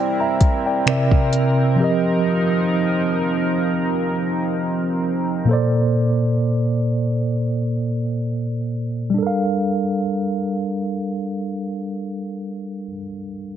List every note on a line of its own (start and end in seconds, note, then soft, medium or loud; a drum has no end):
0.00 0.81 G3 medium
0.00 5.44 C4 medium
0.00 1.75 E4 medium
0.00 0.82 G4 medium
0.00 0.83 A#4 medium
0.00 0.84 A#4 medium
0.00 0.19 D5 medium
0.00 0.19 G5 medium
0.20 0.64 E5 medium
0.20 0.64 A#5 medium
0.41 kick medium
0.41 closed hi-hat medium
0.66 0.88 D5 medium
0.66 1.10 G5 medium
0.86 1.79 C3 medium
0.86 1.78 C3 medium
0.86 1.77 C4 medium
0.86 1.78 A#4 medium
0.86 1.80 A#4 medium
0.86 1.80 D5 medium
0.86 finger snap loud
0.86 closed hi-hat medium
0.90 1.81 E5 medium
1.11 kick medium
1.33 closed hi-hat medium
1.76 5.43 F3 medium
1.76 5.45 F3 medium
1.76 5.44 C4 medium
1.76 5.45 D#4 medium
1.76 5.45 A#4 medium
1.80 5.45 G4 medium
1.80 5.46 A#4 medium
1.80 5.47 D#5 medium
5.45 9.12 A#2 medium
5.45 9.13 A#3 medium
5.49 9.14 A4 medium
5.49 9.15 C5 medium
5.53 9.16 D5 medium
9.10 12.86 G3 medium
9.14 12.90 D4 medium
9.18 12.94 A4 medium
9.22 12.99 A#4 medium
9.27 13.03 F5 medium